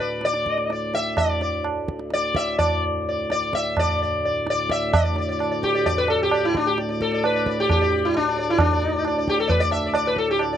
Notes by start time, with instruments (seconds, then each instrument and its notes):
Already playing: harmonium D2 A2, sitar B4
0.00 sitar D5
0.21 sitar D5, tabla te
0.34 tabla te
0.46 tabla ke
0.58 tabla te
0.70 sitar D5, tabla te
0.94 sitar E5, tabla te
1.17 sitar D5, tabla na, tabla ge
1.41 sitar D5, tabla te
1.65 tabla na
1.88 tabla ke
1.99 tabla te
2.10 sitar D5, tabla te
2.35 sitar E5, tabla ke
2.59 sitar D5, tabla na, tabla ge
3.09 sitar D5
3.30 sitar D5, tabla te
3.53 sitar E5, tabla ke
3.77 sitar D5, tabla na, tabla ge
4.02 sitar D5
4.25 sitar D5
4.47 sitar D5, tabla te
4.69 sitar E5, tabla ke
4.93 harmonium D2 A2, sitar D5, tabla na, tabla ge
5.04 sitar D5
5.16 sitar D5, tabla te
5.29 sitar D5
5.39 sitar D5, tabla na
5.52 sitar D5
5.63 sitar G4, tabla ke
5.75 sitar D5, tabla te
5.86 sitar D5, tabla tin, tabla ge
5.98 sitar B4
6.08 sitar A4, tabla na
6.23 sitar G4
6.31 sitar D5, tabla na
6.45 sitar E4
6.55 sitar D4, tabla ke
6.67 sitar G4
6.78 sitar D5, tabla te
6.89 sitar D5, tabla te
7.01 sitar A4, tabla ke
7.12 sitar D5, tabla te
7.24 sitar B4, tabla na
7.36 sitar D5
7.46 sitar D5, tabla ke
7.60 sitar G4
7.70 sitar G4, tabla na, tabla ge
7.82 sitar D5
7.92 tabla te
8.05 sitar E4
8.14 sitar D4, tabla te
8.28 sitar D5
8.37 sitar D5, tabla te
8.50 sitar E4
8.59 sitar D4, tabla na, tabla ge
8.72 sitar D5
8.82 tabla te
8.96 sitar D5
9.05 sitar D5, tabla na
9.18 sitar D5
9.28 sitar G4, tabla ke
9.38 sitar A4, tabla te
9.48 sitar B4 D5, tabla tin, tabla ge
9.60 sitar D5
9.71 sitar E5, tabla na
9.86 sitar D5
9.94 sitar D5, tabla na
10.07 sitar B4
10.16 sitar A4, tabla ke
10.31 sitar G4
10.39 sitar D5, tabla na
10.53 sitar D5